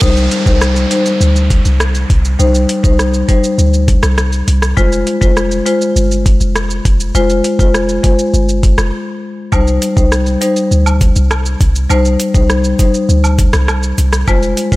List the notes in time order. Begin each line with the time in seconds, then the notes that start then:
0.01 C2 G3 D#4 C5, kick, downlifter, shaker
0.17 shaker
0.31 closed hi-hat, shaker
0.46 C2 G3 D#4 C5, kick, shaker
0.61 cross-stick, shaker
0.76 shaker
0.91 G3 D#4 C5, closed hi-hat, shaker
1.06 shaker
1.21 D2, shaker
1.36 shaker
1.50 kick, closed hi-hat, shaker
1.65 C2, shaker
1.80 cross-stick, shaker
1.95 shaker
2.10 C2, kick, closed hi-hat, shaker
2.25 shaker
2.39 C2 G3 D#4 C5, shaker
2.55 shaker
2.69 closed hi-hat, shaker
2.84 C2 G3 D#4 C5, kick, shaker
2.99 cross-stick, shaker
3.14 shaker
3.28 G3 D#4 C5, kick, closed hi-hat, shaker
3.44 shaker
3.58 D2, shaker
3.74 shaker
3.88 kick, closed hi-hat, shaker
4.03 C2, cross-stick, shaker
4.18 cross-stick, shaker
4.33 shaker
4.48 C2, closed hi-hat, shaker
4.62 cross-stick, shaker
4.77 F1 G#3 F4 C5, kick, shaker
4.92 shaker
5.07 closed hi-hat, shaker
5.21 F1 G#3 F4 C5, kick, shaker
5.37 cross-stick, shaker
5.51 shaker
5.66 G#3 F4 C5, closed hi-hat, shaker
5.81 shaker
5.96 G1, shaker
6.11 shaker
6.26 kick, closed hi-hat, shaker
6.41 F1, shaker
6.56 cross-stick, shaker
6.70 shaker
6.85 F1, kick, closed hi-hat, shaker
7.00 shaker
7.15 F1 G#3 F4 C5, shaker
7.30 shaker
7.44 closed hi-hat, shaker
7.59 F1 G#3 F4 C5, kick, shaker
7.74 cross-stick, shaker
7.89 shaker
8.04 G#3 F4 C5, kick, closed hi-hat, shaker
8.19 shaker
8.34 G1, shaker
8.49 shaker
8.63 kick, closed hi-hat, shaker
8.78 F1, cross-stick, shaker
9.52 C2 G3 D#4 C5, kick, high woodblock, shaker
9.67 shaker
9.82 closed hi-hat, cabasa, shaker
9.97 C2 G3 D#4 C5, kick, shaker
10.12 cross-stick, shaker
10.26 shaker
10.41 G3 D#4 C5, closed hi-hat, cabasa, shaker
10.56 shaker
10.71 D2, shaker
10.86 high woodblock, shaker
11.01 kick, closed hi-hat, cabasa, shaker
11.16 C2, shaker
11.31 cross-stick, high woodblock, shaker
11.46 shaker
11.61 C2, kick, closed hi-hat, cabasa, shaker
11.75 shaker
11.90 C2 G3 D#4 C5, high woodblock, shaker
12.05 shaker
12.20 closed hi-hat, cabasa, shaker
12.34 C2 G3 D#4 C5, kick, shaker
12.50 cross-stick, shaker
12.64 shaker
12.79 G3 D#4 C5, kick, closed hi-hat, cabasa, shaker
12.94 shaker
13.09 D2, shaker
13.24 high woodblock, shaker
13.39 kick, closed hi-hat, cabasa, shaker
13.53 C2, cross-stick, shaker
13.68 cross-stick, high woodblock, shaker
13.83 shaker
13.98 C2, closed hi-hat, cabasa, shaker
14.13 cross-stick, shaker
14.28 F1 G#3 F4 C5, kick, high woodblock, shaker
14.43 shaker
14.57 closed hi-hat, cabasa, shaker
14.72 F1 G#3 F4 C5, kick, shaker